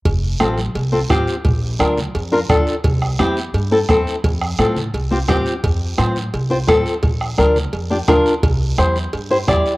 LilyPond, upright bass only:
\new Staff \with { instrumentName = "Upright bass" } { \clef bass \time 4/4 \key f \major \tempo 4 = 172 f,,4 a,,4 c,4 a,,8 r8 | bes,,4 d,4 f,4 d,8 r8 | c,4 e,4 g,4 e,8 r8 | f,4 a,4 c,4 a,8 r8 |
f,4 a,4 c,4 a,8 r8 | bes,,4 d,4 f,4 d,8 r8 | c,4 e,4 g,4 e,8 r8 | }